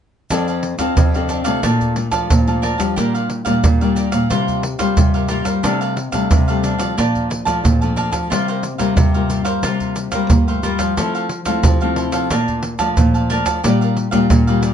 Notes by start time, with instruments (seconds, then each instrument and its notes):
0.30 nylon-string guitar F2 F3 C4 D4 A4, cavaquinho D4 A4 D5 F5, pandeiro, shaker, surdo
0.48 cavaquinho A4 D5 F5, pandeiro, shaker
0.63 muted cavaquinho stroke, pandeiro
0.79 nylon-string guitar F2 C4 D4 A4, cavaquinho A4 D5 F5, pandeiro, shaker, surdo
0.97 nylon-string guitar F2 C3, pandeiro, shaker, surdo
1.14 nylon-string guitar C4 D4 A4, cavaquinho A4 D5 F5, pandeiro, shaker
1.29 cavaquinho D4 A4 D5 F5, pandeiro, shaker
1.44 nylon-string guitar C3 A3 D4 F4, cavaquinho A4 D5 F5, pandeiro, shaker
1.63 nylon-string guitar A#2, cavaquinho A#4 D5 F5 A5, pandeiro, shaker, surdo
1.81 pandeiro, shaker, surdo
1.96 nylon-string guitar A3 D4 F4, muted cavaquinho stroke, pandeiro
2.11 nylon-string guitar F3, cavaquinho D5 F5 A5, pandeiro, shaker, surdo
2.30 nylon-string guitar A#2 F3, pandeiro, shaker, surdo
2.47 nylon-string guitar A3 D4 F4, cavaquinho D5 F5 A5, pandeiro, shaker
2.62 cavaquinho A#4 D5 F5 A5, pandeiro
2.78 nylon-string guitar F3 G3 D4 F4, cavaquinho D5 F5 A5, pandeiro, shaker, surdo
2.96 nylon-string guitar A#2, cavaquinho G4 A#4 D5 F5, pandeiro, shaker, surdo
3.14 cavaquinho A#4 D5 F5, pandeiro, shaker
3.30 muted cavaquinho stroke, pandeiro
3.45 nylon-string guitar A#2 G3 D4 F4, cavaquinho A#4 D5 F5, pandeiro, shaker, surdo
3.64 nylon-string guitar A#2, pandeiro, shaker, surdo
3.81 nylon-string guitar G3 D4 F4, cavaquinho A#4 D5 F5, pandeiro, shaker
3.96 cavaquinho G4 A#4 D5 F5, pandeiro, shaker
4.12 nylon-string guitar A#2, cavaquinho A#4 D5 F5, pandeiro, shaker
4.30 nylon-string guitar C3 G3 A#3 F4, cavaquinho F4 A#4 C5 F5, pandeiro, shaker, surdo
4.48 pandeiro, shaker, surdo
4.63 muted cavaquinho stroke, pandeiro
4.79 nylon-string guitar G3 A#3 F4, cavaquinho A#4 C5 F5, pandeiro, shaker, surdo
4.97 nylon-string guitar G2 C3, pandeiro, shaker, surdo
5.14 cavaquinho A#4 C5 F5, pandeiro, shaker
5.29 nylon-string guitar G3 A#3 F4, cavaquinho F4 A#4 C5 F5, pandeiro, shaker
5.45 nylon-string guitar G3, cavaquinho A#4 C5 F5, pandeiro, shaker, surdo
5.63 nylon-string guitar C3 G3 A3 D4, cavaquinho D4 A4 D5 F5, pandeiro, shaker, surdo
5.81 cavaquinho A4 D5 F5, pandeiro, shaker
5.96 muted cavaquinho stroke, pandeiro
6.12 nylon-string guitar C3 G3 A3 D4, cavaquinho A4 D5 F5, pandeiro, shaker, surdo
6.31 nylon-string guitar C3, pandeiro, shaker, surdo
6.48 nylon-string guitar G3 A3 D4, cavaquinho A4 D5 F5, pandeiro, shaker
6.63 cavaquinho D4 A4 D5 F5, pandeiro, shaker
6.78 nylon-string guitar F3, cavaquinho A4 D5 F5, pandeiro, shaker
6.97 nylon-string guitar A#2 F3 D4, cavaquinho A#4 D5 F5 A5, pandeiro, shaker, surdo
7.15 pandeiro, shaker, surdo
7.30 muted cavaquinho stroke, pandeiro
7.45 nylon-string guitar F3 A3 D4, cavaquinho D5 F5 A5, pandeiro, shaker, surdo
7.64 nylon-string guitar F2 A#2, pandeiro, shaker, surdo
7.81 nylon-string guitar F3 A3 D4, cavaquinho D5 F5 A5, pandeiro, shaker
7.96 cavaquinho A#4 D5 F5 A5, pandeiro, surdo
8.11 nylon-string guitar F3, cavaquinho D5 F5 A5, pandeiro, shaker, surdo
8.30 nylon-string guitar C3 G3 A#3 F4, cavaquinho F4 A#4 C5 F5, pandeiro, shaker, surdo
8.48 cavaquinho A#4 C5 F5, pandeiro, shaker
8.63 muted cavaquinho stroke, pandeiro, shaker
8.78 nylon-string guitar C3 G3 A#3 F4, cavaquinho A#4 C5 F5, pandeiro, shaker, surdo
8.97 nylon-string guitar G2 C3, pandeiro, shaker, surdo
9.14 nylon-string guitar G3 A#3 F4, cavaquinho A#4 C5 F5, pandeiro, shaker
9.29 cavaquinho F4 A#4 C5 F5, pandeiro, shaker
9.45 nylon-string guitar G3, cavaquinho A#4 C5 F5, pandeiro, shaker
9.63 nylon-string guitar C3 G3 A#3 F4, cavaquinho F4 A#4 C5 F5, pandeiro, shaker, surdo
9.80 pandeiro, shaker, surdo
9.96 muted cavaquinho stroke, pandeiro, shaker
10.11 nylon-string guitar G3 A#3 F4, cavaquinho A#4 C5 F5, pandeiro, shaker, surdo
10.30 nylon-string guitar G2 A#3, pandeiro, shaker, surdo
10.47 nylon-string guitar A3, cavaquinho A#4 C5 F5, pandeiro, shaker
10.63 nylon-string guitar G3 A#3 F4, cavaquinho F4 A#4 C5 F5, pandeiro, shaker, surdo
10.79 nylon-string guitar F3, cavaquinho A#4 C5 F5, pandeiro, shaker, surdo
10.97 nylon-string guitar F3 A3 C4 E4, cavaquinho E4 A4 C5 F5, pandeiro, shaker, surdo
11.15 cavaquinho A4 C5 F5, pandeiro, shaker
11.29 muted cavaquinho stroke, pandeiro
11.46 nylon-string guitar F3 A3 C4 E4, cavaquinho A4 C5 F5, pandeiro, shaker, surdo
11.63 nylon-string guitar C3 F3, pandeiro, shaker, surdo
11.81 nylon-string guitar A3 C4 E4, cavaquinho A4 C5 F5, pandeiro, shaker
11.96 cavaquinho E4 A4 C5 F5, pandeiro
12.12 nylon-string guitar F3, cavaquinho A4 C5 F5, pandeiro, shaker
12.30 nylon-string guitar A#2 D4 F4, cavaquinho A#4 D5 F5 A5, pandeiro, shaker, surdo
12.48 pandeiro, shaker, surdo
12.63 muted cavaquinho stroke, pandeiro
12.79 nylon-string guitar F3 A3 D4 F4, cavaquinho D5 F5 A5, pandeiro, shaker, surdo
12.97 nylon-string guitar A#2 F3, pandeiro, shaker, surdo
13.14 cavaquinho D5 F5 A5, pandeiro, shaker
13.30 nylon-string guitar A3 D4 F4, cavaquinho A#4 D5 F5 A5, pandeiro
13.46 nylon-string guitar F3, cavaquinho D5 F5 A5, pandeiro, shaker, surdo
13.64 nylon-string guitar A#2 G3 D4 F4, cavaquinho G4 A#4 D5 F5, pandeiro, shaker, surdo
13.81 cavaquinho A#4 D5 F5, pandeiro, shaker
13.96 muted cavaquinho stroke, pandeiro
14.11 nylon-string guitar A#2 G3 D4 F4, cavaquinho A#4 D5 F5, pandeiro, shaker, surdo
14.30 nylon-string guitar A#2, pandeiro, shaker, surdo
14.47 nylon-string guitar G3 D4 F4, cavaquinho A#4 D5 F5, pandeiro, shaker
14.62 cavaquinho G4 A#4 D5 F5, pandeiro, shaker